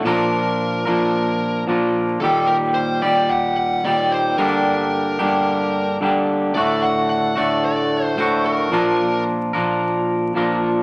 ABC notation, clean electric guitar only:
X:1
M:4/4
L:1/8
Q:1/4=111
K:none
V:1 name="Clean electric guitar" clef=bass
[_B,,F,_B,DF_B]3 [B,,F,B,DFB]3 [B,,F,B,DFB]2 | [_E,,_B,,_E,G,G]3 [E,,B,,E,G,G]3 [E,,B,,E,G,G]2 | [G,,D,G,_B,DG]3 [G,,D,G,B,DG]3 [G,,D,G,B,DG]2 | [D,,A,,D,A,^F]3 [D,,A,,D,A,F]3 [D,,A,,D,A,F]2 |
[_B,,F,_B,DF_B]3 [B,,F,B,DFB]3 [B,,F,B,DFB]2 |]